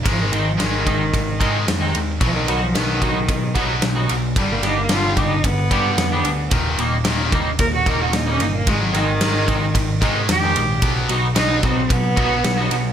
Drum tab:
RD |xxxxxxxx|xxxxxxxx|xxxxxxxx|xxxxxxxx|
SD |--o---o-|--o---o-|-oo---o-|--o---o-|
BD |o--ooo--|o--ooo--|o--ooo--|o--ooo--|

RD |xxxxxxxx|xxxxxxxx|
SD |-oo---o-|--o---o-|
BD |o--ooo--|o--ooo--|